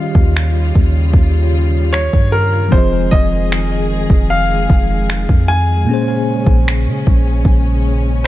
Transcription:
Already playing: C#3 D#3 G3 C#4 F4 G4 D#5 F5
0.15 D#2, kick
0.37 finger snap
0.75 D#2, kick
1.13 D#2, kick
1.93 C#5, finger snap
2.13 G2, kick
2.32 A#4
2.68 F1 D#3 F3 G#3 C4 G#4 C5, kick
2.73 F4 G#4
2.78 D#5
3.11 F1 D#5, kick
3.52 finger snap
4.10 F1, kick
4.30 F5
4.70 F1, kick
5.10 finger snap
5.29 F2, kick
5.48 G#5
5.84 A#2 C#3 A#3 C#4
5.89 C#4 G#4
5.93 C5
6.46 A#1, kick
6.68 finger snap
6.86 C#3
7.07 A#1, kick
7.45 A#1, kick

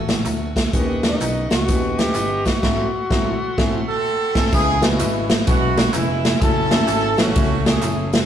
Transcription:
Already playing: A1 A3 E4 F#4 A4 F#5 G#5 E6
0.09 snare, closed hi-hat, tambourine
0.25 D2, clap, closed hi-hat, tambourine
0.56 kick, snare, closed hi-hat, tambourine
0.73 D#2 D#3 B3 C#4 D#4 G4 B4 D#5 F#5 C#6, kick, closed hi-hat, tambourine
1.03 D#4, snare, closed hi-hat, tambourine
1.20 B1, clap, closed hi-hat, tambourine
1.50 C#2 F#4, snare, closed hi-hat, tambourine
1.68 D#2 B3 C#4 D#4 F#4, kick, closed hi-hat, tambourine
1.74 G4
1.98 G4, snare, closed hi-hat, tambourine
2.15 G1, clap, closed hi-hat, tambourine
2.45 F#4, kick, snare, closed hi-hat, tambourine
2.62 G#1 G#2 A3 C4 E4 F#4 A4 E5 F#5 C6, kick, snare, crash
3.10 G#1 G#2 A3 C4 E4 F#4, kick, snare
3.58 G#1 A3 C4 E4 G#4, kick, snare
3.88 C4 F#4 A4
4.35 G#1 A3 C4 E4 G#4, kick, snare, crash
4.52 C#2 C#3 G#3 B3 C#4 E4 G#4, kick, crash, tambourine
4.81 G#3 B3 C#4 D#4 F#4, snare, ride, tambourine
4.88 E4
4.99 G#1, clap, ride, tambourine
5.30 snare, ride, tambourine
5.47 B1 G#3 B3 C#4 E4 F#4, kick, ride, tambourine
5.77 snare, ride, tambourine
5.93 F1 G#3 B3 E4, clap, ride, tambourine
6.25 snare, ride, tambourine
6.40 F#1 A3 C#4 E4 F#4 A4, kick, ride, tambourine
6.70 A3 C#4 E4 F#4 G#4, snare, ride, tambourine
6.77 A4
6.88 G#1, clap, ride, tambourine
7.17 A1 A3 C#4 F#4, snare, ride, tambourine
7.36 C#2 A3 C#4 E4 F#4 C#5, kick, ride, tambourine
7.65 C#4 E4 G#4, snare, ride, tambourine
7.82 F#1, clap, ride, tambourine
8.13 snare, ride, tambourine

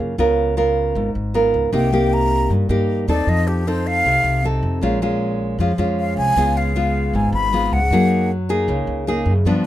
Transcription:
Already playing: C#3 A#3 F4 G#4
0.00 F#2
0.18 C#2 C#3 B3 F4 A#4
0.57 B3 F4 A#4
0.95 G#1 G#2
1.15 G#1
1.34 B3 F4 A#4
1.54 C#2
1.72 C2 C3 A#3 D#4 G4 G5
1.92 A#3 D#4 G4
2.13 A#5
2.50 G2
2.69 G2 A#3 D#4 G4
3.08 D#2 C4 D#4 A4 D5
3.27 F2 F3 D#5
3.47 G4
3.67 C4 D#4 A4 C5
3.87 F5
4.04 C2 C3
4.24 C2
4.44 C4 D#4 A4
4.63 F2
4.81 A#1 A#2 G#3 C#4 F4
5.02 G#3 C#4 F4
5.58 F2 F3 G#3 C#4 F4
5.78 F2 G#3 C#4 F4
6.00 F5
6.17 C2 G#5
6.36 C#2 C#3 G#3 B3 F4
6.57 F5
6.76 G#3 B3 F4
7.13 G#1 G#2 G#5
7.32 G#1 B5
7.53 G#3 B3 F4
7.72 C#2 F#5
7.90 F#2 F#3 A#3 D#4 G#4
8.49 A#3 D#4 G#4
8.68 C#2 C#3
8.87 C#2
9.07 A#3 D#4 G#4
9.26 F#2
9.45 G2 F3 B3 D4

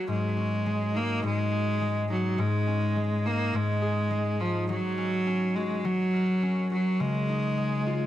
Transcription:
Already playing: F#3 G#3 A#3 C#4 F#4 G#4
0.08 G#2 G#3
0.37 C#4
0.66 G#3
0.94 A#3 D#4
1.24 G#2 G#3
1.52 G#4
1.81 G#3
2.10 F#3 D#4
2.38 G#2 G#3
2.67 C#4
2.96 G#3
3.25 A#3 D#4
3.53 G#2 G#3
3.82 G#4
4.10 G#3
4.40 F3 D#4
4.69 F#3
4.98 C#4
5.27 C#4
5.56 G#3 F#4
5.85 F#3
6.13 A#4
6.43 C#4
6.72 F#3 F#4
7.00 C#3 G#3
7.29 D#4
7.58 G#3
7.86 F4

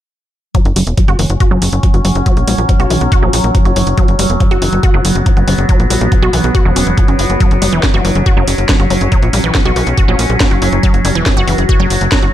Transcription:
0.55 F#3 C#4, kick, closed hi-hat
0.65 F#1, closed hi-hat
0.76 F#1 G3, open hi-hat
0.87 E1, closed hi-hat
0.98 F#3, kick, closed hi-hat
1.08 F#1 F#4, closed hi-hat
1.19 F#1 E3, open hi-hat
1.30 F#1, closed hi-hat
1.40 F#4, kick, closed hi-hat
1.51 F#1 F#3
1.62 F#1, open hi-hat
1.73 F#1, closed hi-hat
1.83 F#3, kick, closed hi-hat
1.94 F#1 F#4, closed hi-hat
2.05 F#1 F#3, open hi-hat
2.15 F#1, closed hi-hat
2.26 F#3, kick, closed hi-hat
2.37 A#1, closed hi-hat
2.48 A#1 G3, open hi-hat
2.58 A#1, closed hi-hat
2.69 F#3, kick, closed hi-hat
2.80 B1 F#4, closed hi-hat
2.90 B1 E3, open hi-hat
3.01 B1, closed hi-hat
3.12 F#4, kick, closed hi-hat
3.23 A#1 F#3
3.33 A#1, open hi-hat
3.44 A#1, closed hi-hat
3.55 F#3, kick, closed hi-hat
3.65 F#1 F#4, closed hi-hat
3.76 F#1 F#3, open hi-hat
3.87 F#1, closed hi-hat
3.98 F#3 B3, kick, closed hi-hat
4.08 F#1, closed hi-hat
4.19 F#1 G3, open hi-hat
4.30 E1, closed hi-hat
4.40 F#3, kick, closed hi-hat
4.51 F#1 F#4, closed hi-hat
4.62 F#1 E3, open hi-hat
4.73 F#1, closed hi-hat
4.83 F#4, kick, closed hi-hat
4.94 F#1 F#3
5.05 F#1, open hi-hat
5.15 F#1, closed hi-hat
5.26 F#3, kick, closed hi-hat
5.37 F#1 F#4, closed hi-hat
5.48 F#1 F#3, open hi-hat
5.58 F#1, closed hi-hat
5.69 F#3, kick, closed hi-hat
5.80 A#1, closed hi-hat
5.90 A#1 G3, open hi-hat
6.01 A#1, closed hi-hat
6.12 F#3, kick, closed hi-hat
6.23 B1 F#4, closed hi-hat
6.33 B1 E3, open hi-hat
6.44 B1, closed hi-hat
6.55 F#4, kick, closed hi-hat
6.65 E1 F#3
6.76 E1 C#4, open hi-hat
6.87 E1, closed hi-hat
6.98 F#3, kick, closed hi-hat
7.08 F#1 C#4, closed hi-hat
7.19 F#1 F#3, open hi-hat
7.30 F#1, closed hi-hat
7.40 F#3 C#4, kick, closed hi-hat
7.51 F#1, closed hi-hat
7.62 F#1 G3, open hi-hat
7.73 E1 E3
7.83 F#3, kick, snare, closed hi-hat
7.94 F#1 F#4, closed hi-hat
8.05 F#1 E3, open hi-hat
8.15 F#1, closed hi-hat
8.26 F#4, kick, closed hi-hat
8.37 F#1 F#3
8.48 F#1, open hi-hat
8.58 F#1, closed hi-hat
8.69 F#3, kick, snare, closed hi-hat
8.80 F#1 F#4, closed hi-hat
8.90 F#1 F#3, open hi-hat
9.01 F#1, closed hi-hat
9.12 F#3, kick, closed hi-hat
9.23 A#1, closed hi-hat
9.33 A#1 G3, open hi-hat
9.44 A#1 E3
9.55 F#3, kick, snare, closed hi-hat
9.65 B1 F#4, closed hi-hat
9.76 B1 E3, open hi-hat
9.87 B1, closed hi-hat
9.98 F#4, kick, closed hi-hat
10.08 A#1 F#3
10.19 A#1, open hi-hat
10.30 A#1, closed hi-hat
10.40 F#3, kick, snare, closed hi-hat
10.51 F#1 F#4, closed hi-hat
10.62 F#1 F#3, open hi-hat
10.73 F#1, closed hi-hat
10.83 F#3 F#4, kick, closed hi-hat
10.94 F#1, closed hi-hat
11.05 F#1 G3, open hi-hat
11.15 E1 E3, closed hi-hat
11.26 F#3, kick, snare, closed hi-hat
11.37 F#1 F#4, closed hi-hat
11.48 F#1 E3, open hi-hat
11.58 F#1, closed hi-hat
11.69 F#4, kick, closed hi-hat
11.80 F#1 F#3
11.90 F#1, open hi-hat
12.01 F#1, closed hi-hat
12.12 F#3, kick, snare, closed hi-hat
12.23 F#1 F#4, closed hi-hat

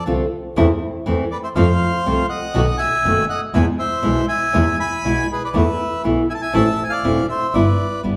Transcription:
0.06 C2 D3 A3 C4 F4
0.56 E2 E3 A3 C4 E4
1.06 E2 E3 A3 C4 E4
1.31 B4 D5
1.44 C5 E5
1.55 F2 C3 F3 A3 C4 F4 C5 F5
2.06 C2 C3 F3 A3 C4 F4
2.29 D#5 F#5
2.54 B1 B2 D#3 A3 B3 F#4
2.78 E5 G#5
3.04 F#1 B2 D#3 A3 B3 F#4
3.30 D#5 F#5
3.54 E2 B2 E3 G#3 B3 E4 E5 G#5
3.79 C5 E5
4.03 B1 B2 E3 G#3 B3 E4
4.29 E5 G#5
4.53 E2 B2 E3 G#3 B3 E4
4.80 G#5 B5
5.04 B1 B2 E3 G#3 B3 E4
5.32 G#4 B4
5.44 B4 D5
5.54 E2 E3 A3 B3 E4 B4 E5
6.04 B1 E3 A3 B3 E4
6.30 E5 G#5
6.35 A5
6.42 E5 G#5
6.53 A1 E3 A3 C4 E4 E5 A5
6.84 G#5
6.90 D5 F5
7.04 E1 E3 A3 C4 E4
7.29 C5 E5
7.54 G1 G3 B3 E4 B4 D5
8.03 G1 G3 B3 E4

